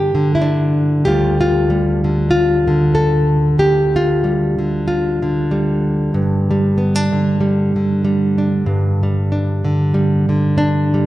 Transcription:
Already playing: G2 D3 D4 G4
0.15 D3
0.35 E4
0.41 D4
1.05 D2 D3 G3 F4 G4
1.41 F4
1.70 G3
2.04 D3
2.31 F4
2.68 D3
2.95 A4
3.59 D2 G4
3.96 F4
4.24 G3
4.59 D3
4.88 F4
5.22 D3
5.51 G3
6.14 G2
6.51 G3
6.78 B3
6.96 D4
7.13 D3
7.41 G3
7.76 D3
8.05 G3
8.38 D4
8.66 G2
9.03 G3
9.32 D4
9.65 D3
9.94 G3
10.29 D3
10.58 D4
10.94 G3

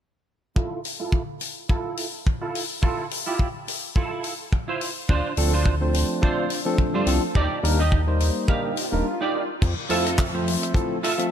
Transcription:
0.56 E4 F4 A4, kick
0.85 open hi-hat
1.00 E4 F4 A4
1.12 kick
1.41 muted clean electric guitar stroke, open hi-hat
1.69 E4 F4 A4, kick
1.97 open hi-hat
2.27 kick
2.41 E4 F4 A4
2.55 open hi-hat
2.82 E4 F4 A4, kick
3.11 open hi-hat
3.26 E4 F4 G4
3.39 kick
3.68 muted clean electric guitar stroke, open hi-hat
3.96 E4 F4 A4, kick
4.24 open hi-hat
4.53 kick
4.68 E4 F4 C5
4.81 open hi-hat
5.09 D2 D4 F4 C5, kick
5.37 D2 F3 A3 C4 D4 A4, open hi-hat
5.53 D4 F4 C5
5.66 kick
5.81 F3 A3 C4 D4 C5
5.94 muted clean electric guitar stroke, open hi-hat
6.22 F3 A3 C4 D4 F4 A4 C5, kick
6.50 open hi-hat
6.65 F3 A3 C4 D4 A4
6.78 kick
6.94 G2 D4 F4 C5
7.07 C2 F3 A3 C4 D4 A4, open hi-hat
7.35 D#2 D#4 G4 D5, kick
7.63 D#2 G3 A#3 D4 D#4 A#4, open hi-hat
7.79 D#4 G4 D#5
7.92 kick
8.07 G3 A#3 D#4 C5
8.20 muted clean electric guitar stroke, open hi-hat
8.48 G3 A#3 D4 D#4 G4 A#4 F5, kick, swell
8.77 open hi-hat
8.92 D#1 G3 A#3 D4 D#4 A#4
9.21 D#4 G4 D5
9.62 F2, kick, closed hi-hat, crash
9.90 F2 F3 A3 C4 E4 F4 A4 E5, open hi-hat
10.06 cross-stick, closed hi-hat
10.18 kick, clap, closed hi-hat
10.34 F3 A3 C4 C5 E5
10.48 open hi-hat
10.62 muted clean electric guitar stroke, closed hi-hat
10.74 F3 A3 C4 E4 A4, muted clean electric guitar stroke, kick, closed hi-hat
11.03 F4 A4 E5, cross-stick, open hi-hat
11.18 F3 A3 C4 A4 E5, closed hi-hat

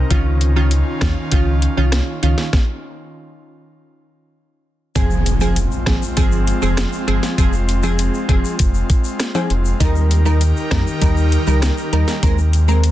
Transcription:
Already playing: D#4
0.10 C#2 D#3 C#4 F4, kick, closed hi-hat
0.41 closed hi-hat
0.56 D#3 C#4 F4
0.71 closed hi-hat
1.01 D#2 D#3 C#4 F4, kick, cross-stick, snare, closed hi-hat
1.32 C#2 D#3 C#4 F4, kick, closed hi-hat
1.62 closed hi-hat
1.77 C2 D#3 C#4 F4
1.92 cross-stick, snare, closed hi-hat
2.23 C#2 D#3 C#4 F4, closed hi-hat
2.38 snare
2.53 kick, snare
4.95 F1 F3 G#3 C4 F4 G#4, kick, closed hi-hat, impact, shaker
5.10 shaker
5.26 closed hi-hat, shaker
5.41 F3 C4 G#4, shaker
5.56 closed hi-hat, shaker
5.72 shaker
5.86 G#1 F3 C4 G#4, kick, cross-stick, snare, closed hi-hat
6.03 shaker
6.17 G1 F3 C4 G#4, kick, closed hi-hat, shaker
6.32 shaker
6.47 closed hi-hat, shaker
6.62 F1 F3 C4 G#4, shaker
6.77 cross-stick, snare, closed hi-hat, shaker
6.93 shaker
7.07 G1 F3 C4 G#4, closed hi-hat
7.23 snare, shaker
7.38 F1 F3 C4 G#4, kick, closed hi-hat, shaker
7.53 shaker
7.69 closed hi-hat, shaker
7.83 F3 C4 G#4, shaker
7.99 closed hi-hat, shaker
8.14 shaker
8.29 F1 F3 C4 G#4, kick, closed hi-hat
8.45 shaker
8.59 F1, kick, closed hi-hat, shaker
8.74 shaker
8.90 kick, closed hi-hat, shaker
9.04 shaker
9.20 cross-stick, snare, closed hi-hat, shaker
9.35 F3 C4 G#4, high timbale, shaker
9.50 F1, closed hi-hat
9.65 shaker
9.80 D#2 D#3 G3 D#4 G4 A#4, kick, closed hi-hat, shaker
9.96 shaker
10.11 closed hi-hat, shaker
10.25 G3 D#4 A#4, shaker
10.41 closed hi-hat, shaker
10.57 shaker
10.71 F2 G3 D#4 A#4, kick, cross-stick, snare, closed hi-hat
10.87 shaker
11.01 D#2 G3 D#4 A#4, kick, closed hi-hat, shaker
11.17 shaker
11.32 closed hi-hat, shaker
11.47 C#2 G3 D#4 A#4, shaker
11.62 cross-stick, snare, closed hi-hat, shaker
11.78 shaker
11.93 D#2 G3 D#4 A#4, closed hi-hat
12.08 snare, shaker
12.23 D#2 G#3 A#3 C4 A#4, kick, closed hi-hat, shaker
12.38 shaker
12.53 closed hi-hat, shaker
12.68 G#3 C4 A#4, shaker
12.84 closed hi-hat, shaker

